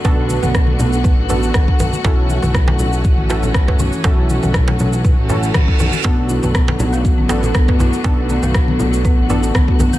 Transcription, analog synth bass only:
X:1
M:4/4
L:1/16
Q:"Swing 16ths" 1/4=120
K:Bm
V:1 name="Analog synth bass" clef=bass
B,,,3 B,,,3 B,,,3 A,,,3 B,,, z B,,, z | B,,,3 B,,,3 B,,,3 A,,,3 B,,, z B,,, z | B,,,3 B,,,3 B,,,3 A,,,3 A,,, z B,,, z | B,,,3 B,,,3 B,,,3 A,,,3 B,,, z B,,, z |
B,,,3 B,,,3 B,,,3 A,,,3 B,,, z B,,, z |]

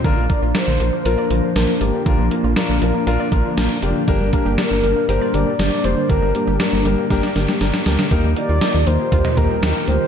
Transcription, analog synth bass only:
X:1
M:4/4
L:1/16
Q:1/4=119
K:Gphr
V:1 name="Analog synth bass" clef=bass
B,,, B,,, z B,,, z B,,, B,,, z B,,, z B,,, z B,,, z A,,, z | B,,, B,,, z B,,, z B,,, B,,, z B,,, z B,,, z B,,, z F,,, z | G,,, G,,, z G,,, z G,,, G,,, z G,,, z G,,, z G,,, z F,,, z | G,,, G,,, z G,,, z G,,, G,,, z G,,, z G,,, z G,,, z D,, z |
E,, E,, z E,, z E,, E,, z E,, z E,, z E,, z D,, z |]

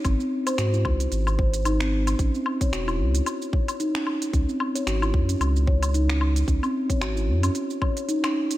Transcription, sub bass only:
X:1
M:4/4
L:1/8
Q:"Swing 16ths" 1/4=112
K:C#m
V:1 name="Sub bass" clef=bass
G,,, z G,, ^B,,, G,,,4 | A,,, z E,,, C,, z4 | C,, z G,,, F,, C,,4 | C,, z G,,, F,, z4 |]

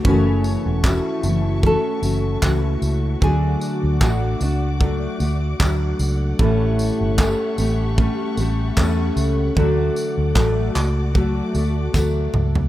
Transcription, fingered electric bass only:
X:1
M:4/4
L:1/16
Q:"Swing 16ths" 1/4=76
K:F#m
V:1 name="Fingered electric bass" clef=bass
F,,,3 E,,,2 z F,,,3 z F,,,2 C,,2 C,,2 | D,,2 z D,, A,,,2 C,,4 D,,2 D,,2 C,,2 | A,,,3 =G,,,2 z A,,,3 z A,,,2 E,,2 C,,2 | D,,2 z D,, A,,,2 C,,4 D,,2 D,,2 C,,2 |]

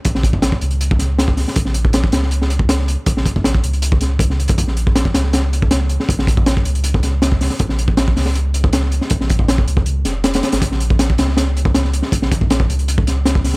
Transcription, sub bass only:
X:1
M:4/4
L:1/16
Q:1/4=159
K:Bbm
V:1 name="Sub bass" clef=bass
B,,,6 D,,8- D,, z | B,,,6 D,,8- D,, z | B,,,6 D,,8- D,, z | B,,,6 D,,8- D,, z |
B,,,6 D,,8- D,, z | B,,,6 D,,8- D,, z | B,,,6 D,,4 F,,,4 z A,,, | B,,,6 D,,8- D,, z |
B,,,6 D,,8- D,, z |]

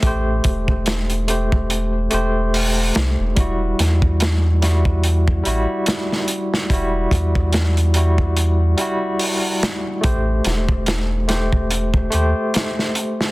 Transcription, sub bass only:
X:1
M:4/4
L:1/16
Q:"Swing 16ths" 1/4=72
K:Em
V:1 name="Sub bass" clef=bass
A,,,2 E,,,8 E,,,4 C,, E,,, | E,,,2 E,,8 A,,, z4 z | E,,,2 E,,8 z6 | A,,,2 E,,,8 ^D,, z4 z |]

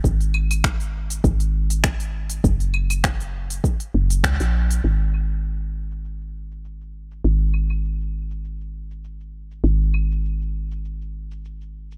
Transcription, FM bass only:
X:1
M:4/4
L:1/16
Q:"Swing 16ths" 1/4=100
K:F#
V:1 name="FM bass" clef=bass
G,,,8 G,,,8 | F,,,8 z2 F,,,2 C,, A,,,3 | G,,,16 | G,,,16 |
G,,,16 |]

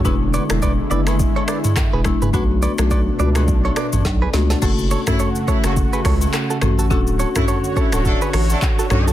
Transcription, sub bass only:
X:1
M:4/4
L:1/16
Q:"Swing 16ths" 1/4=105
K:F#m
V:1 name="Sub bass" clef=bass
E,,,3 E,,,3 F,,,3 z4 E,,,2 F,,, | B,,,3 B,,,3 C,,2 B,,,2 z A,,, B,,,2 C,,2 | F,,,3 z4 F,,,2 z C,,2 z2 A,,,2 | D,,,3 z4 D,,,2 z A,,,2 z2 B,,,2 |]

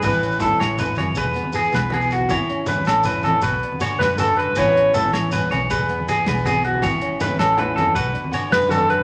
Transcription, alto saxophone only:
X:1
M:12/8
L:1/8
Q:3/8=106
K:A
V:1 name="Alto saxophone"
B2 z8 z2 | z8 z B A B | c2 z8 z2 | z8 z B A B |]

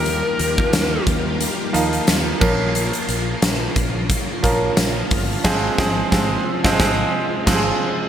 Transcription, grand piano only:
X:1
M:4/4
L:1/16
Q:"Swing 16ths" 1/4=89
K:Bbdor
V:1 name="Grand piano"
[F,B,EG]4- [F,B,EG] z4 z [F,B,EF]4 [F,B,DB]2- | [F,B,DB]4- [F,B,DB] z4 z [F,B,DB]4- [F,B,DB] z | [F,A,CA]2 [F,A,CA]2 [F,A,CA]2 z [F,A,CA] [F,A,CA]2 z2 [F,A,CA]2 z2 |]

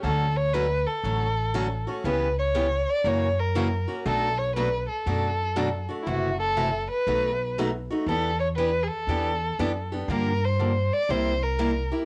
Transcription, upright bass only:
X:1
M:4/4
L:1/8
Q:"Swing" 1/4=119
K:D
V:1 name="Upright bass" clef=bass
D,,4 A,,,4 | C,,4 F,,4 | B,,,4 F,,4 | F,,,4 B,,,4 |
E,,4 E,,2 F,,2 | G,,4 =C,,4 |]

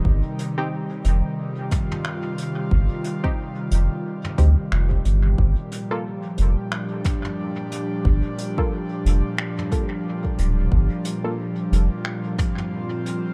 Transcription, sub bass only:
X:1
M:4/4
L:1/8
Q:"Swing 16ths" 1/4=90
K:Gm
V:1 name="Sub bass" clef=bass
G,,, z2 F,,, z4 | G,,, z2 F,,, z D,, F,,, G,,, | G,,, z2 F,,, z4 | G,,, z2 F,,, z3 D,,, |
G,,, z2 F,,, z4 |]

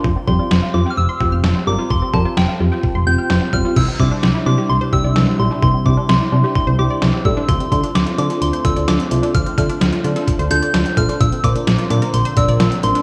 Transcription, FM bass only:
X:1
M:4/4
L:1/16
Q:1/4=129
K:Cmix
V:1 name="FM bass" clef=bass
F,,, z F,, z F,,, z F,, z F,,, z F,,, F,,, F,,, z G,,, z | F,,, z F,, z F,,, z F,, z2 F,,, F,,, z F,,, z E,,, z | C,, z C, z C,, z C, z C,, z C,, C,, C,, z B,,, z | C,, z C, z C,, z C, z2 C,, C,, z C,, z A,,, z |
D,, z D, z D,, z D, z D,, z D,, D,, D,, z C,, z | D,, z D, z D,, z D, z2 D,, D,, z D,, z B,,, z | B,,, z B,, z B,,, z B,, z B,,, z B,,, B,,, B,,, z A,,, z |]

